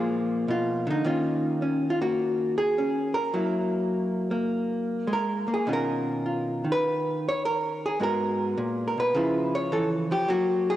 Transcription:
0.00 0.47 A#2 medium
0.00 1.04 F3 soft
0.00 1.05 A#3 soft
0.00 0.48 F4 soft
0.00 1.04 G#4 soft
0.48 0.88 B2 medium
0.48 0.89 F4 medium
0.87 1.04 D3 medium
0.87 1.06 D#4 medium
1.04 3.32 D#3 medium
1.04 2.01 A#3 soft
1.04 1.62 C#4 soft
1.04 1.89 F4 medium
1.62 2.78 C#4 soft
1.90 2.01 F4 medium
2.01 3.33 A#3 medium
2.01 2.57 F#4 medium
2.58 3.34 G#4 medium
2.78 3.34 C#4 soft
3.14 4.90 A#4 medium
3.34 5.07 F#3 medium
3.34 4.31 A#3 soft
3.34 5.66 E4 soft
4.31 5.48 A#3 soft
5.07 5.47 G#3 medium
5.13 5.52 A#4 medium
5.48 5.67 A#3 soft
5.54 5.70 G#4 medium
5.67 6.67 B2 medium
5.67 6.63 D#3 soft
5.67 7.99 C#4 soft
5.67 6.25 F4 soft
5.73 6.70 A#4 medium
6.26 7.82 F4 soft
6.65 7.97 D#3 soft
6.72 7.27 B4 medium
7.29 7.45 C#5 medium
7.45 8.02 A#4 medium
7.86 8.01 G#4 medium
8.00 8.57 G#2 medium
8.00 9.13 G#3 soft
8.00 9.13 B3 soft
8.00 9.14 F#4 soft
8.00 8.86 A#4 medium
8.57 8.97 A#2 medium
8.87 8.98 A#4 medium
8.98 9.14 B2 soft
8.98 9.55 B4 medium
9.14 10.27 C#3 medium
9.14 10.10 F3 soft
9.14 10.28 E4 soft
9.14 9.72 F4 soft
9.55 10.12 C#5 medium
9.72 10.12 E3 medium
9.72 9.88 A4 medium
10.11 10.28 F3 medium
10.11 10.30 G4 medium
10.28 10.77 F#3 medium
10.28 10.77 A#3 soft
10.28 10.77 F#4 medium
10.70 10.77 G#4 medium

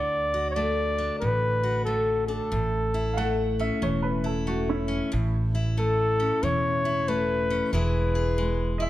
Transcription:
0.00 1.08 D2 medium
0.00 2.52 D3 medium
0.00 0.47 D5 loud
0.34 1.62 F#4 medium
0.51 0.56 C#5 medium
0.51 1.19 D5 loud
0.56 1.86 A3 medium
0.98 2.27 D4 medium
1.20 2.38 A1 medium
1.20 2.50 A2 medium
1.20 1.82 B4 medium
1.63 2.49 F#4 medium
1.85 3.17 A3 medium
1.85 2.24 A4 medium
2.27 2.49 D4 medium
2.27 3.54 A4 medium
2.52 3.68 A1 medium
2.52 5.10 A2 medium
2.94 4.23 E4 medium
3.14 3.18 F5 medium
3.14 3.59 F#5 medium
3.18 4.46 A3 medium
3.59 4.87 C#4 medium
3.59 3.82 E5 medium
3.82 4.99 E1 medium
3.82 6.42 E3 medium
3.82 4.04 C#5 medium
4.02 4.24 B4 medium
4.24 5.54 E4 medium
4.24 4.47 A4 medium
4.47 5.09 A3 medium
4.47 4.69 F#4 medium
4.69 5.30 C#4 medium
4.69 5.33 E4 medium
4.88 5.09 C#4 medium
5.12 6.29 A1 medium
5.12 7.72 A2 medium
5.55 6.84 E4 medium
5.77 7.07 A3 medium
5.77 6.45 A4 medium
6.20 7.49 C#4 medium
6.43 7.59 E1 medium
6.43 7.70 E3 medium
6.43 7.10 C#5 loud
6.85 7.73 E4 medium
7.08 7.70 A3 medium
7.08 7.73 B4 medium
7.50 7.71 C#4 medium
7.72 8.88 E1 medium
7.72 8.90 E3 medium
7.72 8.37 G#3 medium
7.72 8.79 E4 medium
7.72 8.14 G#4 medium
7.72 8.75 B4 medium
8.15 8.90 G#4 medium
8.38 8.90 G#3 medium
8.78 8.90 E4 medium
8.78 8.83 D#5 medium
8.78 8.90 E5 medium

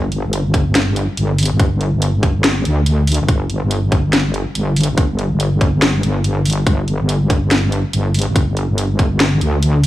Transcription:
0.00 0.23 G1 loud
0.12 closed hi-hat medium
0.25 1.07 G1 medium
0.33 closed hi-hat medium
0.54 kick loud
0.54 closed hi-hat medium
0.75 snare loud
0.75 closed hi-hat medium
0.96 closed hi-hat medium
1.17 1.50 G1 medium
1.17 closed hi-hat medium
1.38 open hi-hat loud
1.43 closed hi-hat medium
1.45 closed hi-hat medium
1.51 1.92 G1 medium
1.59 kick loud
1.59 closed hi-hat medium
1.81 closed hi-hat medium
1.93 2.64 G1 loud
2.02 closed hi-hat medium
2.23 kick loud
2.23 closed hi-hat medium
2.44 snare loud
2.44 closed hi-hat medium
2.65 3.19 D2 medium
2.65 closed hi-hat medium
2.86 closed hi-hat medium
3.07 open hi-hat medium
3.12 closed hi-hat medium
3.14 closed hi-hat medium
3.20 3.28 G1 medium
3.28 3.61 G1 loud
3.28 kick loud
3.28 closed hi-hat medium
3.50 closed hi-hat medium
3.63 4.45 G1 loud
3.71 closed hi-hat medium
3.92 kick loud
3.92 closed hi-hat medium
4.13 snare loud
4.13 closed hi-hat medium
4.34 closed hi-hat medium
4.55 4.88 G1 medium
4.55 closed hi-hat medium
4.76 open hi-hat medium
4.81 closed hi-hat medium
4.83 closed hi-hat medium
4.89 5.30 G1 medium
4.98 kick loud
4.98 closed hi-hat medium
5.19 closed hi-hat medium
5.31 6.02 G1 loud
5.40 closed hi-hat medium
5.61 kick loud
5.61 closed hi-hat medium
5.82 snare loud
5.82 closed hi-hat medium
6.03 6.65 G1 medium
6.03 closed hi-hat medium
6.24 closed hi-hat medium
6.45 open hi-hat medium
6.50 closed hi-hat medium
6.53 closed hi-hat medium
6.67 6.99 G1 loud
6.67 kick loud
6.67 closed hi-hat medium
6.88 closed hi-hat medium
7.00 7.83 G1 loud
7.09 closed hi-hat medium
7.30 kick loud
7.30 closed hi-hat medium
7.51 snare loud
7.51 closed hi-hat medium
7.72 closed hi-hat soft
7.93 8.26 G1 medium
7.93 closed hi-hat medium
8.14 open hi-hat medium
8.19 closed hi-hat medium
8.22 closed hi-hat medium
8.27 8.68 G1 medium
8.36 kick loud
8.36 closed hi-hat medium
8.57 closed hi-hat medium
8.69 9.40 G1 loud
8.78 closed hi-hat medium
8.99 kick loud
8.99 closed hi-hat medium
9.20 snare loud
9.20 closed hi-hat medium
9.41 9.87 D2 medium
9.41 closed hi-hat medium
9.63 closed hi-hat medium
9.84 open hi-hat medium

